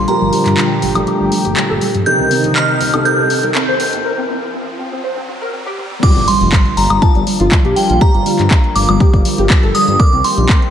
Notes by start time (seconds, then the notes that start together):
Already playing: A#2 D3 F3 G3, riser
0.08 G3 D4 F4 G4 A#4 A#5, closed hi-hat
0.21 G1 G3
0.33 G3, open hi-hat
0.46 G2, clap, closed hi-hat
0.57 G3, clap, closed hi-hat
0.82 G1 G3, open hi-hat
0.95 G1 G3 A3 D4 F4 G4, closed hi-hat, high woodblock
1.07 G4, closed hi-hat
1.20 G1 G3
1.32 G3, open hi-hat
1.45 G1 G4, closed hi-hat
1.57 G3, clap, closed hi-hat
1.70 G1 A4
1.81 G3, open hi-hat
1.95 G2 G3, closed hi-hat
2.06 C3 D#3 C4 D#4 G4 A#4 G6, closed hi-hat
2.19 C2 C4
2.31 C4, open hi-hat
2.44 A#1, closed hi-hat
2.56 C4 F6, clap, closed hi-hat
2.81 C2 C4, open hi-hat
2.94 C2 C3 C4 D#4 G4 A4, closed hi-hat, high woodblock
3.05 A#4 G6, closed hi-hat
3.19 C2 C4
3.30 C4, open hi-hat
3.43 C2 A#4, closed hi-hat
3.55 C4, clap, closed hi-hat
3.68 D#2 C5
3.80 C4, open hi-hat
3.93 D#2 C4, closed hi-hat
4.05 A#4
4.18 C4
4.29 C4
4.54 C4
4.79 C4
4.92 C4
5.04 C5
5.17 C4
5.28 C4
5.42 A#4
5.53 C4
5.66 G4
5.78 C4
5.91 C4
6.03 D3 F3 G3 A#3 F4 D6, kick, closed hi-hat, crash, impact
6.16 G1 G3, closed hi-hat
6.28 G3 C6, open hi-hat
6.41 F1, closed hi-hat
6.52 G3, kick, clap, closed hi-hat
6.66 closed hi-hat
6.77 G1 G3 A#5, open hi-hat
6.90 G1 G3, closed hi-hat, high woodblock
7.02 F4 A5, kick, closed hi-hat
7.15 G1 G3, closed hi-hat
7.27 G3, open hi-hat
7.40 G1 F4, closed hi-hat
7.52 G3, kick, clap, closed hi-hat
7.65 A#1 G4, closed hi-hat
7.76 G3 G5, open hi-hat
7.90 A#1 G3, closed hi-hat
8.01 G4 A#5, kick, closed hi-hat
8.14 G1 G3, closed hi-hat
8.26 G3, open hi-hat
8.39 G2, clap, closed hi-hat
8.51 G3, kick, clap, closed hi-hat
8.64 closed hi-hat
8.75 G1 G3 D6, open hi-hat
8.89 G1 G3, closed hi-hat, high woodblock
9.00 G4, kick, closed hi-hat
9.14 G1 G3, kick, closed hi-hat
9.25 G3, open hi-hat
9.38 G1 G4, closed hi-hat
9.50 G3, kick, clap, closed hi-hat
9.63 G1 A4, closed hi-hat
9.75 G3 D#6, open hi-hat
9.88 G2 G3, closed hi-hat
10.00 D#3 C4 G4 A#4 D6, kick, closed hi-hat
10.13 C2 C4, closed hi-hat
10.24 C4 C6, open hi-hat
10.37 A#1, closed hi-hat
10.49 C4, kick, clap, closed hi-hat
10.62 closed hi-hat